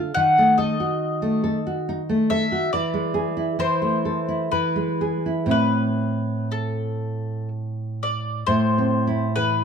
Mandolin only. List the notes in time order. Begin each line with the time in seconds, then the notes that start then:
Already playing: F5
0.14 F#5
0.58 D#5
2.30 E5
2.73 D5
3.60 C5
4.52 B4
5.51 B4
6.52 A4
8.03 D5
8.47 C5
9.36 B4